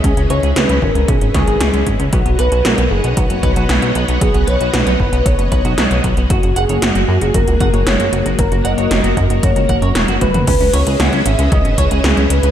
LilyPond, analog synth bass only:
\new Staff \with { instrumentName = "Analog synth bass" } { \clef bass \time 4/4 \key cis \dorian \tempo 4 = 115 cis,16 cis,16 cis,16 cis,16 cis,16 cis,16 gis,,16 cis,16 b,,16 gis,,16 cis,16 gis,,16 cis,16 cis,16 gis,,16 cis,16 | b,,16 b,,16 b,,16 b,,16 b,,16 b,,16 fis,,16 b,,16 b,,16 fis,,16 b,,16 b,,16 b,,16 b,,16 b,,16 b,,16 | b,,16 b,,16 b,,16 b,,16 b,,16 b,,16 fis,,16 b,,16 b,,16 fis,,16 b,,16 b,,16 b,,16 b,,16 b,,16 b,,16 | fis,,16 fis,,16 fis,,16 fis,,16 fis,,16 fis,,16 fis,16 fis,,16 fis,,16 cis,16 fis,,16 fis,,16 fis,,16 fis,,16 fis,,16 fis,,16 |
fis,,16 fis,,16 fis,,16 fis,,16 fis,,16 fis,,16 fis,16 fis,,16 fis,,16 cis,16 fis,,16 fis,16 e,,16 fis,,16 fis,,16 fis,,16 | cis,16 cis,16 cis,16 cis,16 cis,16 cis,16 gis,,16 cis,16 cis,16 gis,,16 cis,16 cis,16 cis,16 cis,16 cis,16 cis,16 | }